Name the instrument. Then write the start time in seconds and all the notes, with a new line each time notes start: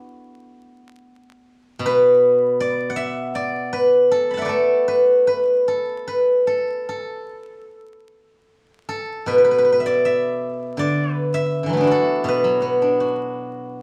guzheng
Already playing: A3 B3 D4 E4 F#4 A4
1.79 B2
1.86 B4
2.60 D5
2.90 F#5
2.96 E5
3.35 D5
3.73 B4
4.11 A4
4.31 A5 B5
4.37 E5 F#5
4.41 A3 D5
4.46 A4 B4
4.88 B4
5.27 B4
5.68 A4
6.07 B4
6.47 A4
6.89 A4
8.89 A4
9.26 B2 B4
9.38 B4
9.44 B4
9.51 B4
9.58 B4
9.65 B4
9.72 B4
9.80 E5
9.86 D5
10.05 E5
10.77 D3 D5
11.13 B4
11.34 E5
11.63 D3 E3
11.69 F#3 A3
11.77 B3 D4
11.84 E4 F#4
11.91 A4
12.24 B2
12.28 B4
12.44 F#3
12.62 B3
12.82 D4
13.00 F#4